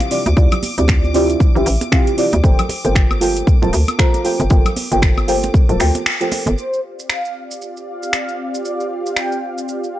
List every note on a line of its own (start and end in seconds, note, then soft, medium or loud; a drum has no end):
0.00 6.59 D6 medium
0.00 closed hi-hat medium
0.00 muted conga medium
0.00 shaker soft
0.10 0.27 C4 medium
0.10 0.27 E4 medium
0.10 0.27 F4 medium
0.10 0.27 G4 medium
0.10 0.27 D5 medium
0.10 open hi-hat loud
0.10 shaker medium
0.26 0.34 D2 medium
0.26 closed hi-hat medium
0.26 high conga medium
0.26 shaker soft
0.36 0.48 D2 loud
0.36 0.53 C4 medium
0.36 0.53 E4 medium
0.36 0.53 F4 medium
0.36 0.53 G4 medium
0.36 0.53 D5 loud
0.36 kick loud
0.36 shaker soft
0.52 closed hi-hat soft
0.52 muted conga soft
0.52 low conga medium
0.52 high woodblock medium
0.52 shaker soft
0.63 open hi-hat loud
0.63 high conga medium
0.63 shaker medium
0.77 1.36 D2 medium
0.77 1.12 C4 medium
0.77 1.12 E4 medium
0.77 1.12 F4 medium
0.77 1.12 G4 medium
0.77 1.12 D5 medium
0.77 closed hi-hat medium
0.77 shaker soft
0.88 finger snap loud
0.88 kick loud
0.88 muted conga medium
0.88 shaker soft
1.04 high conga medium
1.04 shaker soft
1.14 1.52 C4 loud
1.14 1.52 E4 medium
1.14 1.52 F4 medium
1.14 1.52 G4 medium
1.14 1.52 D5 loud
1.14 open hi-hat loud
1.14 shaker medium
1.30 closed hi-hat medium
1.30 shaker soft
1.40 kick loud
1.40 muted conga soft
1.40 high conga medium
1.40 shaker soft
1.55 1.63 A1 loud
1.55 1.67 C4 medium
1.55 1.67 E4 medium
1.55 1.67 F4 medium
1.55 1.67 G4 medium
1.55 1.67 E5 loud
1.55 shaker soft
1.66 1.77 A1 loud
1.66 open hi-hat loud
1.66 shaker medium
1.81 closed hi-hat medium
1.81 muted conga medium
1.81 high conga medium
1.81 shaker soft
1.91 2.14 C4 loud
1.91 2.15 E4 medium
1.91 2.15 F4 medium
1.91 2.15 G4 medium
1.91 2.15 F5 loud
1.91 finger snap loud
1.91 kick loud
1.91 shaker soft
2.07 closed hi-hat medium
2.07 shaker soft
2.17 2.34 C4 medium
2.17 2.34 E4 medium
2.17 2.34 F4 medium
2.17 2.34 G4 medium
2.17 2.34 D5 medium
2.17 open hi-hat loud
2.17 shaker medium
2.33 2.41 D2 medium
2.33 closed hi-hat medium
2.33 muted conga soft
2.33 high conga medium
2.33 shaker soft
2.43 2.55 G1 loud
2.43 2.59 F4 medium
2.43 2.60 A4 medium
2.43 2.60 A#4 medium
2.43 2.60 C5 medium
2.43 2.60 G5 loud
2.43 kick loud
2.43 shaker soft
2.59 closed hi-hat medium
2.59 low conga loud
2.59 high woodblock medium
2.59 shaker soft
2.69 open hi-hat loud
2.69 muted conga medium
2.69 high conga medium
2.69 shaker medium
2.84 3.43 G1 medium
2.84 3.18 F4 medium
2.84 3.19 A4 medium
2.84 3.19 A#4 medium
2.84 3.19 C5 medium
2.84 3.19 G5 medium
2.84 closed hi-hat medium
2.84 shaker soft
2.95 finger snap loud
2.95 kick loud
2.95 shaker soft
3.11 high conga medium
3.11 high woodblock medium
3.11 shaker soft
3.21 3.58 F4 loud
3.21 3.59 A4 medium
3.21 3.59 A#4 medium
3.21 3.59 C5 medium
3.21 3.59 G5 loud
3.21 open hi-hat loud
3.21 muted conga medium
3.21 shaker medium
3.37 closed hi-hat medium
3.37 shaker soft
3.47 kick loud
3.47 high conga medium
3.47 shaker soft
3.62 3.70 D1 loud
3.62 3.74 F4 medium
3.62 3.74 A4 medium
3.62 3.74 A#4 medium
3.62 3.74 C5 medium
3.62 3.74 A5 loud
3.62 muted conga medium
3.62 shaker soft
3.73 3.84 D2 loud
3.73 open hi-hat medium
3.73 shaker medium
3.88 closed hi-hat medium
3.88 high conga medium
3.88 high woodblock medium
3.88 shaker soft
3.98 4.21 F4 loud
3.98 4.21 A4 medium
3.98 4.22 A#4 medium
3.98 4.22 C5 medium
3.98 4.22 A#5 loud
3.98 finger snap loud
3.98 kick loud
3.98 shaker soft
4.14 closed hi-hat medium
4.14 muted conga medium
4.14 shaker soft
4.24 4.40 F4 medium
4.24 4.41 A4 medium
4.24 4.41 A#4 medium
4.24 4.41 C5 medium
4.24 4.41 G5 medium
4.24 open hi-hat loud
4.24 shaker medium
4.40 4.48 G1 medium
4.40 closed hi-hat medium
4.40 high conga medium
4.40 shaker soft
4.50 4.62 G1 loud
4.50 4.66 F4 medium
4.50 4.66 A4 medium
4.50 4.67 A#4 medium
4.50 4.67 C5 medium
4.50 4.67 G5 medium
4.50 kick loud
4.50 muted conga medium
4.50 shaker soft
4.65 closed hi-hat medium
4.65 low conga medium
4.65 high woodblock medium
4.65 shaker soft
4.76 open hi-hat loud
4.76 high conga medium
4.76 shaker medium
4.91 5.50 G1 medium
4.91 5.25 F4 medium
4.91 5.25 A4 medium
4.91 5.26 A#4 medium
4.91 5.26 C5 medium
4.91 5.26 G5 medium
4.91 closed hi-hat medium
4.91 shaker soft
5.02 finger snap loud
5.02 kick loud
5.02 muted conga medium
5.02 shaker soft
5.18 high conga medium
5.18 high woodblock medium
5.18 shaker soft
5.28 5.65 F4 loud
5.28 5.65 A4 medium
5.28 5.66 A#4 medium
5.28 5.66 C5 medium
5.28 5.66 G5 loud
5.28 open hi-hat loud
5.28 shaker medium
5.43 closed hi-hat medium
5.43 muted conga medium
5.43 shaker soft
5.54 kick loud
5.54 high conga medium
5.54 shaker soft
5.69 5.77 D1 loud
5.69 5.77 F4 medium
5.69 5.78 A4 medium
5.69 5.78 A#4 medium
5.69 5.78 C5 medium
5.69 5.78 A5 loud
5.69 closed hi-hat soft
5.69 shaker soft
5.79 5.91 D2 loud
5.79 6.02 F4 medium
5.79 6.03 A4 medium
5.79 6.03 A#4 medium
5.79 6.03 C5 medium
5.79 6.03 G5 loud
5.79 finger snap medium
5.79 open hi-hat loud
5.79 shaker medium
5.95 closed hi-hat medium
5.95 muted conga medium
5.95 high conga medium
5.95 shaker soft
6.06 finger snap loud
6.06 shaker soft
6.21 6.55 F4 medium
6.21 6.55 A4 medium
6.21 6.55 A#4 medium
6.21 6.55 C5 medium
6.21 6.55 G5 medium
6.21 closed hi-hat medium
6.21 shaker soft
6.32 open hi-hat loud
6.32 muted conga medium
6.32 shaker medium
6.46 6.55 G1 loud
6.46 closed hi-hat medium
6.46 high conga medium
6.46 shaker soft
6.57 9.99 C4 medium
6.57 9.99 F4 medium
6.57 9.99 G4 medium
6.57 6.80 C5 loud
6.57 9.99 D5 medium
6.57 9.99 F5 medium
6.57 shaker soft
6.73 shaker soft
6.99 shaker medium
7.09 7.43 F5 medium
7.09 finger snap loud
7.09 shaker soft
7.25 shaker soft
7.51 shaker medium
7.62 shaker medium
7.77 shaker soft
7.87 8.56 F5 medium
8.03 shaker medium
8.13 finger snap loud
8.13 shaker medium
8.29 shaker soft
8.55 shaker medium
8.64 8.87 D5 medium
8.64 shaker soft
8.80 shaker soft
9.06 shaker medium
9.16 9.50 G5 medium
9.16 finger snap loud
9.16 shaker soft
9.32 shaker soft
9.58 shaker medium
9.69 shaker soft
9.84 shaker soft
9.94 9.99 G5 medium